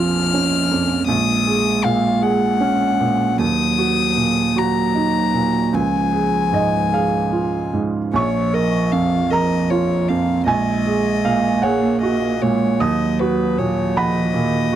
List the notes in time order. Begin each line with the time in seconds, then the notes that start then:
Already playing: A#1 F2 F3 F4 F6
0.34 C#4
0.71 F2
1.07 A#1 G#3 D#6
1.47 G#4
1.84 A#2 F5
2.22 G#4 F#5
2.60 C#4
3.00 A#2
3.39 D#2 F#3 D#6
3.78 F#4
4.17 A#2
4.56 F#3 F#4 A#5
4.95 D#4
5.34 A#2
5.73 C#2 F3 G#5
6.12 G#4
6.52 G#2 D#5
6.92 G#4 F5
7.32 F4
7.73 G#2
8.14 A#1 F3 C#5 C#6
8.54 A#4 D#5
8.92 F2 F5
9.31 F3 A#4 D#5 A#5
9.70 F4 C#5
10.09 F2 F5
10.46 A#1 G#3 D#5 G#5
10.86 G#4
11.25 A#2 F5
11.62 A#3 G#4 C#5 F#5
12.02 A#3 F#4 D#5
12.41 A#2 G#3 C#5
12.80 D#2 F#3 D#5 D#6
13.19 F#4 B4
13.58 A#2 C#5
13.97 F3 D#5 F#5 B5
14.34 A#2 D#3
14.73 F#4